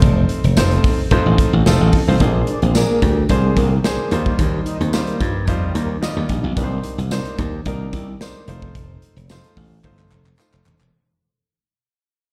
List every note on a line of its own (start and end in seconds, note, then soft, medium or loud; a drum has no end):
0.00 0.23 F1 loud
0.00 0.41 A3 medium
0.00 0.41 C4 medium
0.00 0.41 D#4 medium
0.00 0.42 F4 medium
0.00 0.42 C5 loud
0.00 kick loud
0.00 closed hi-hat medium
0.29 closed hi-hat medium
0.44 0.54 F1 loud
0.44 closed hi-hat soft
0.57 0.78 F1 loud
0.57 0.97 A3 medium
0.57 0.97 C4 medium
0.57 0.98 D#4 medium
0.57 0.98 F4 medium
0.57 0.98 C5 loud
0.57 snare loud
0.57 closed hi-hat loud
0.57 tambourine loud
0.71 closed hi-hat medium
0.84 kick loud
0.84 open hi-hat medium
1.11 1.22 F2 loud
1.11 1.52 A3 loud
1.11 1.52 C4 medium
1.11 1.52 D#4 loud
1.11 1.52 F4 medium
1.11 1.52 C5 loud
1.11 kick loud
1.11 closed hi-hat medium
1.26 1.36 A1 medium
1.38 kick loud
1.38 closed hi-hat loud
1.53 1.63 A1 loud
1.66 1.77 F1 medium
1.66 1.96 A3 loud
1.66 1.96 C4 loud
1.66 1.96 D#4 loud
1.66 1.97 F4 loud
1.66 1.97 A4 loud
1.66 snare loud
1.66 closed hi-hat medium
1.66 tambourine medium
1.80 1.90 A1 medium
1.93 kick loud
1.93 open hi-hat medium
2.08 2.18 C2 medium
2.08 2.20 A3 medium
2.08 2.21 C4 medium
2.08 2.21 D#4 medium
2.08 2.21 F4 medium
2.08 2.20 C5 medium
2.20 2.41 A#1 loud
2.20 2.61 A#3 medium
2.20 2.61 D4 medium
2.20 2.61 G#4 medium
2.20 2.62 C5 medium
2.20 kick loud
2.20 closed hi-hat loud
2.47 2.59 D4 medium
2.47 2.60 D5 medium
2.47 closed hi-hat medium
2.62 2.83 A#1 medium
2.62 2.72 C4 medium
2.62 2.72 C5 medium
2.62 closed hi-hat medium
2.75 3.16 A#3 medium
2.75 3.16 D4 medium
2.75 3.16 G#4 medium
2.75 3.16 A#4 loud
2.75 snare loud
2.75 closed hi-hat loud
2.75 tambourine loud
2.89 2.99 A#3 medium
2.89 3.00 A#4 medium
3.02 3.23 D2 loud
3.02 3.14 G3 medium
3.02 3.14 G4 loud
3.02 kick loud
3.02 closed hi-hat medium
3.29 3.50 C2 loud
3.29 3.70 A#3 medium
3.29 3.71 D4 medium
3.29 3.71 G#4 medium
3.29 3.71 C5 loud
3.29 kick loud
3.29 closed hi-hat medium
3.44 3.54 G#3 medium
3.44 3.54 G#4 medium
3.57 3.78 C2 medium
3.57 3.68 A#3 medium
3.57 3.69 A#4 medium
3.57 kick loud
3.57 closed hi-hat medium
3.84 4.11 A#3 medium
3.84 4.12 D4 medium
3.84 4.12 G#4 medium
3.84 4.11 C5 loud
3.84 snare loud
3.84 closed hi-hat medium
3.84 tambourine medium
4.11 4.32 D#2 medium
4.11 4.77 G3 medium
4.11 4.78 D#4 medium
4.11 4.78 F4 medium
4.11 4.78 C5 loud
4.11 closed hi-hat medium
4.26 kick medium
4.39 4.60 D#2 loud
4.39 kick loud
4.39 closed hi-hat medium
4.66 4.77 D#4 medium
4.66 4.78 D#5 medium
4.66 closed hi-hat medium
4.80 5.01 D#2 loud
4.80 4.90 C4 medium
4.80 4.90 C5 medium
4.80 closed hi-hat medium
4.93 5.34 G3 medium
4.93 5.34 D#4 medium
4.93 5.34 F4 medium
4.93 5.34 C5 loud
4.93 snare loud
4.93 closed hi-hat loud
4.93 tambourine loud
5.07 5.18 A#3 medium
5.07 5.18 A#4 medium
5.07 closed hi-hat medium
5.20 5.48 G2 loud
5.20 5.32 F3 medium
5.20 5.32 F4 medium
5.20 kick loud
5.20 closed hi-hat medium
5.47 5.69 F2 loud
5.47 5.89 G3 medium
5.47 5.89 D#4 medium
5.47 5.89 F4 medium
5.47 5.89 C5 loud
5.47 kick loud
5.47 closed hi-hat medium
5.62 5.72 G3 medium
5.62 5.72 G4 medium
5.74 5.96 D#2 medium
5.74 5.86 A#3 medium
5.74 5.86 A#4 medium
5.74 closed hi-hat medium
6.02 6.43 G3 medium
6.02 6.43 D#4 medium
6.02 6.43 F4 medium
6.02 6.43 D#5 medium
6.02 snare loud
6.02 closed hi-hat medium
6.02 tambourine medium
6.17 6.26 D#2 loud
6.29 6.41 A#1 medium
6.29 kick loud
6.29 closed hi-hat medium
6.44 6.54 B1 loud
6.57 6.78 C2 loud
6.57 6.98 A#3 medium
6.57 6.98 D4 medium
6.57 6.98 D#4 medium
6.57 6.64 B4 medium
6.57 kick loud
6.57 closed hi-hat medium
6.64 7.01 C5 medium
6.84 closed hi-hat medium
6.98 7.19 C2 medium
6.98 closed hi-hat soft
7.11 7.52 A#3 medium
7.11 7.52 D4 medium
7.11 7.52 D#4 medium
7.11 7.52 C5 loud
7.11 snare loud
7.11 closed hi-hat loud
7.11 tambourine loud
7.25 closed hi-hat medium
7.38 7.60 D#2 medium
7.38 kick loud
7.38 closed hi-hat medium
7.65 7.87 C2 loud
7.65 8.07 A#3 medium
7.65 8.07 D4 medium
7.65 8.07 D#4 medium
7.65 8.07 A#4 loud
7.65 kick loud
7.65 closed hi-hat medium
7.93 8.14 C2 medium
7.93 kick loud
7.93 closed hi-hat medium
8.20 8.48 A#3 medium
8.20 8.48 D4 medium
8.20 8.46 D#4 medium
8.20 8.47 C5 loud
8.20 snare loud
8.20 closed hi-hat medium
8.20 tambourine medium
8.48 8.69 F1 medium
8.48 9.14 A3 medium
8.48 9.14 D#4 medium
8.48 9.14 F4 medium
8.48 9.14 C5 loud
8.48 closed hi-hat medium
8.62 kick medium
8.75 8.96 F1 loud
8.75 kick loud
8.75 closed hi-hat medium
9.02 closed hi-hat medium
9.16 9.37 F1 loud
9.16 closed hi-hat soft
9.29 9.71 A3 medium
9.29 9.71 D#4 medium
9.29 9.71 F4 medium
9.29 9.71 C5 loud
9.29 snare loud
9.29 closed hi-hat loud
9.29 tambourine loud
9.44 closed hi-hat medium
9.57 9.78 A1 medium
9.57 kick medium
9.57 open hi-hat medium
9.84 10.05 G1 medium
9.84 10.25 A3 medium
9.84 10.25 D#4 medium
9.84 10.25 F4 medium
9.84 10.25 C5 loud
9.84 kick loud
9.84 clap medium
9.99 clap medium
10.11 10.32 F1 medium
10.11 clap medium
10.26 clap medium
10.39 10.79 A3 medium
10.39 10.79 D#4 medium
10.39 10.80 F4 medium
10.39 10.80 C5 medium
10.39 clap medium
10.39 tambourine medium
10.53 10.63 F1 loud
10.53 clap medium
10.66 10.77 D#1 medium
10.66 clap loud
10.80 10.90 E1 medium
10.80 clap medium